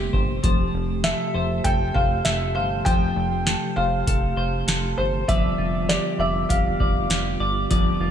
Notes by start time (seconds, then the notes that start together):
Already playing: C3 F3 G3 A#3 E4 G4 C5
0.13 G1 C5, kick
0.43 F1 F3 A3 C5, kick, closed hi-hat
0.74 F1
1.04 A4 E5, snare, closed hi-hat
1.34 F1 C5
1.64 F1 A4 G5, kick, closed hi-hat
1.94 F1 C5 F5, kick
2.25 F1 A4 E5, snare, closed hi-hat
2.55 G1 C5 F5
2.85 F1 F3 C5 G5, kick, closed hi-hat
3.16 F1
3.46 A4, snare, closed hi-hat
3.76 F1 C5 F5
4.07 F1 A4, kick, closed hi-hat
4.37 F1 C5
4.68 F1 A4, snare, closed hi-hat
4.98 G1 C5
5.28 F1 D3 F3 G3 B3 F4 D5 E5, kick, closed hi-hat
5.58 F1 F4
5.89 G4 D5, snare, closed hi-hat
6.19 F1 D5 E5
6.49 F1 G4 F5, kick, closed hi-hat
6.80 F1 D5, kick
7.10 F1 G4, snare, closed hi-hat
7.40 G1 D5
7.70 F1 F3 D5, kick, closed hi-hat
8.00 F1 F4